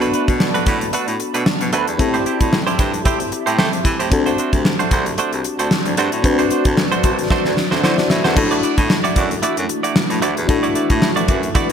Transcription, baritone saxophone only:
0.28 0.48 B2 medium
0.67 0.87 A2 medium
1.08 1.17 A2 medium
1.34 1.43 B2 medium
1.61 1.70 B2 medium
1.73 1.84 D2 medium
1.87 1.96 E2 medium
1.99 2.19 A2 medium
2.41 2.60 A2 medium
2.79 2.99 G2 medium
3.46 3.55 A2 medium
3.58 3.69 A3 loud
3.85 3.96 E3 medium
4.00 4.09 A2 medium
4.12 4.32 D2 loud
4.53 4.73 D2 medium
4.91 5.11 C2 medium
5.32 5.41 C2 medium
5.59 5.68 D2 medium
5.86 5.95 D2 medium
5.97 6.08 G2 medium
6.12 6.21 A2 medium
6.24 6.44 D2 loud
6.65 6.85 D2 medium
7.04 7.24 C2 medium
7.45 7.54 D2 medium
7.71 7.80 D2 medium
7.83 7.94 D3 medium
8.10 8.21 A2 medium
8.25 8.34 E2 medium
8.37 8.56 A2 medium
8.78 8.98 A2 loud
9.16 9.36 F#2 medium
9.57 9.66 F#2 medium
10.10 10.19 A2 medium
10.22 10.33 D2 medium
10.37 10.46 E2 medium
10.49 10.69 A2 loud
10.90 11.10 A2 loud
11.29 11.48 F#2 medium

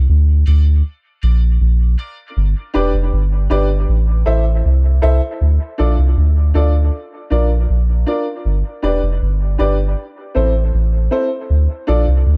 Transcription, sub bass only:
0.09 0.44 D2 loud
0.47 0.82 D2 loud
1.23 1.58 A#1 loud
1.61 1.96 A#1 loud
2.37 2.54 G1 loud
2.75 2.93 E1 medium
2.94 3.11 F1 medium
3.13 3.48 G1 loud
3.51 3.86 G1 loud
3.89 4.24 A1 loud
4.27 4.62 A1 loud
4.65 5.00 C2 loud
5.03 5.21 C2 loud
5.41 5.59 D2 loud
5.80 5.97 A#1 medium
5.98 6.16 C2 medium
6.17 6.53 D2 medium
6.55 6.90 D2 medium
7.31 7.67 A#1 loud
7.70 8.05 A#1 loud
8.45 8.63 G1 loud
8.83 9.01 E1 medium
9.03 9.20 F1 medium
9.22 9.57 G1 medium
9.60 9.95 G1 medium
10.36 10.71 A1 loud
10.74 11.09 A1 loud
11.50 11.68 D2 loud
11.89 12.06 A#1 medium
12.08 12.25 C2 medium
12.26 12.37 D2 medium

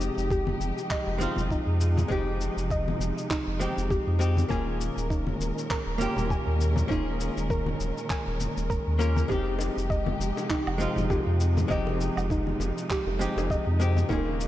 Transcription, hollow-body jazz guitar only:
0.00 1.17 G#3 medium
0.00 1.17 C4 medium
0.00 1.18 D#4 medium
0.00 1.18 G4 medium
1.18 2.06 G#3 medium
1.18 2.07 C4 medium
1.18 2.07 D#4 medium
1.18 2.08 F4 loud
2.08 3.56 G#3 medium
2.08 3.57 C4 medium
2.08 3.57 D#4 medium
2.08 3.58 G4 medium
3.59 4.17 G#3 medium
3.59 4.17 C4 medium
3.59 4.17 D#4 medium
3.59 4.18 G4 medium
4.19 4.47 G#3 medium
4.19 4.47 C4 medium
4.19 4.47 D#4 medium
4.19 4.47 G4 medium
4.49 5.96 A#3 medium
4.49 5.97 C#4 medium
4.49 5.98 F4 medium
4.49 5.98 G#4 medium
5.98 6.86 A#3 medium
5.98 6.87 C#4 medium
5.98 6.87 F4 medium
5.98 6.88 G4 loud
6.88 8.36 A#3 medium
6.88 8.37 C#4 medium
6.88 8.37 F4 medium
6.88 8.38 G#4 medium
8.99 9.26 A#3 medium
8.99 9.27 C#4 medium
8.99 9.27 F4 medium
8.99 9.27 A#4 loud
9.28 10.76 G#3 medium
9.28 10.77 C4 medium
9.28 10.77 D#4 medium
9.28 10.78 G4 medium
10.78 11.66 G#3 medium
10.78 11.67 C4 medium
10.78 11.67 D#4 medium
10.78 11.68 F4 medium
11.68 13.16 G#3 medium
11.68 13.16 C4 medium
11.68 13.17 D#4 medium
11.68 13.18 G4 medium
13.19 13.77 G#3 medium
13.19 13.77 C4 medium
13.19 13.77 D#4 medium
13.19 13.78 G4 medium
13.80 14.07 G#3 medium
13.80 14.07 C4 medium
13.80 14.07 D#4 medium
13.80 14.08 G4 medium
14.09 14.48 A#3 medium
14.09 14.48 C#4 medium
14.09 14.48 F4 medium
14.09 14.48 G#4 medium

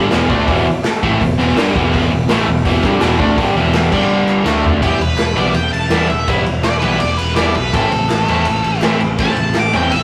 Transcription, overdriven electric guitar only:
0.00 0.11 G2 loud
0.00 0.12 D3 loud
0.00 0.12 G3 loud
0.12 0.30 E2 medium
0.12 0.29 B2 medium
0.12 0.30 E3 loud
0.29 0.47 D3 loud
0.29 0.48 A3 loud
0.29 0.49 D4 loud
0.47 0.66 E2 medium
0.47 0.66 B2 loud
0.47 0.66 E3 loud
1.03 1.21 A2 medium
1.03 1.21 E3 medium
1.03 1.21 A3 medium
1.21 1.36 E2 medium
1.21 1.36 B2 medium
1.38 1.57 E2 medium
1.38 1.57 B2 medium
1.38 1.57 E3 loud
1.58 1.75 G2 loud
1.58 1.76 D3 loud
1.58 1.76 G3 loud
1.75 1.91 E2 medium
1.75 1.91 B2 loud
1.75 1.92 E3 loud
1.92 2.10 E2 loud
1.92 2.11 B2 loud
1.92 2.11 E3 loud
2.11 2.26 E2 medium
2.11 2.26 B2 medium
2.30 2.47 A2 loud
2.30 2.48 E3 loud
2.30 2.48 A3 loud
2.48 2.62 E2 medium
2.48 2.62 B2 medium
2.65 2.83 E2 medium
2.65 2.83 B2 loud
2.65 2.84 E3 loud
2.83 3.00 G2 loud
2.83 3.01 D3 loud
2.83 3.02 G3 loud
3.00 3.19 E2 medium
3.00 3.18 B2 loud
3.00 3.18 E3 loud
3.18 3.36 D3 loud
3.18 3.37 A3 loud
3.18 3.37 D4 loud
3.37 3.55 G2 medium
3.37 3.55 D3 medium
3.37 3.56 G3 loud
3.56 3.91 E2 loud
3.56 3.92 B2 medium
3.56 3.92 E3 loud
3.91 4.46 G2 medium
3.91 4.43 D3 loud
3.91 4.45 G3 loud
4.44 4.81 D3 medium
4.44 4.82 A3 loud
4.44 4.82 D4 medium
4.82 4.97 E3 medium
4.82 4.98 G3 medium
4.82 4.97 B3 medium
4.82 4.98 E4 loud
5.36 5.52 E3 medium
5.36 5.52 G3 medium
5.36 5.52 B3 loud
5.36 5.52 E4 loud
5.91 6.06 E3 medium
5.91 6.07 G3 medium
5.91 6.07 B3 medium
5.91 6.07 E4 loud
6.28 6.43 E3 medium
6.28 6.43 G3 medium
6.28 6.43 B3 medium
6.28 6.44 E4 loud
6.83 6.98 E3 medium
6.83 6.98 G3 medium
6.83 6.99 B3 medium
6.83 6.99 E4 loud
7.37 7.52 E3 loud
7.37 7.52 G3 medium
7.37 7.53 B3 medium
7.37 7.53 E4 medium
7.73 7.89 A2 medium
7.73 7.89 E3 medium
7.73 7.89 A3 loud
7.73 7.89 C4 loud
7.73 7.90 E4 loud
8.29 8.44 A2 medium
8.29 8.44 E3 medium
8.29 8.44 A3 medium
8.29 8.44 C4 medium
8.29 8.45 E4 loud
8.83 8.98 A2 medium
8.83 8.98 E3 medium
8.83 8.99 A3 loud
8.83 8.99 C4 medium
8.83 8.99 E4 loud
9.20 9.35 A2 medium
9.20 9.35 E3 medium
9.20 9.35 A3 medium
9.20 9.36 C4 medium
9.20 9.36 E4 medium
9.73 9.89 A2 medium
9.73 9.89 E3 medium
9.73 9.89 A3 medium
9.73 9.90 C4 medium
9.73 9.90 E4 medium

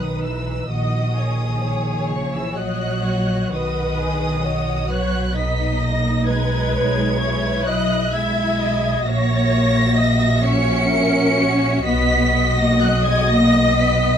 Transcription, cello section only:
0.00 0.23 D#3 medium
0.24 0.71 E3 medium
0.71 2.07 D#3 medium
2.10 2.34 C#3 medium
2.34 2.57 E3 medium
2.58 3.50 F#3 medium
3.51 4.88 D#3 medium
4.88 5.34 F#3 medium
5.34 5.79 B3 medium
5.80 6.27 A#3 medium
6.27 7.66 G#3 medium
7.67 8.12 F#3 medium
8.13 9.02 G#3 medium
9.04 10.41 A#3 loud
10.45 11.83 C#4 loud
11.86 12.56 B3 loud
12.58 12.81 A#3 loud
12.83 13.06 F#3 medium
13.07 13.31 G#3 loud
13.31 13.78 A#3 loud
13.80 14.18 B3 loud

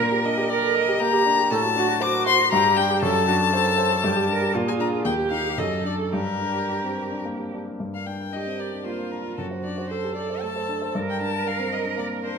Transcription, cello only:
0.00 0.49 A#4 medium
0.50 0.99 A#4 medium
1.01 1.50 G4 medium
1.52 1.60 A4 medium
1.77 2.01 F#4 medium
2.02 2.51 F#4 medium
2.53 3.01 G4 medium
3.03 3.27 A4 medium
3.28 3.36 F#4 medium
3.52 4.05 A4 medium
4.04 4.29 G4 medium
4.29 4.57 A#4 medium
4.55 5.05 F4 medium
5.05 5.60 G4 medium
5.58 6.14 A4 medium
6.13 7.53 G4 medium
8.33 8.82 G4 soft
8.86 9.40 F4 soft
9.38 9.92 F#4 soft
9.91 10.97 A4 medium
10.96 12.38 A#4 medium

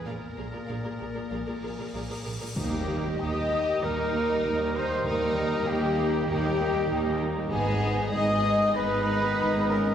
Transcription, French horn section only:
0.05 2.21 A#3 medium
2.56 3.16 G4 medium
3.20 3.82 D#5 medium
3.83 4.73 A#4 medium
4.75 5.06 C5 medium
5.06 5.66 A#4 loud
5.69 6.26 G4 loud
6.27 7.18 G4 loud
7.48 8.08 G#4 loud
8.10 8.73 D#5 loud
8.72 9.65 B4 loud
9.66 9.95 A#4 medium

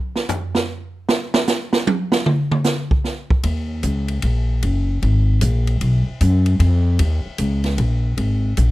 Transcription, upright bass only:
3.44 3.83 D#2 medium
3.83 4.22 C#2 medium
4.23 4.62 A#1 medium
4.63 5.01 F#1 medium
5.02 5.41 G#1 medium
5.42 5.80 A#1 medium
5.81 6.05 B1 medium
6.07 muted upright bass stroke soft
6.21 6.59 F#2 medium
6.59 6.98 F2 medium
6.99 7.23 D#2 medium
7.25 muted upright bass stroke soft
7.39 7.78 C#2 medium
7.78 8.17 A#1 medium
8.17 8.56 G#1 medium
8.57 8.71 A#1 medium

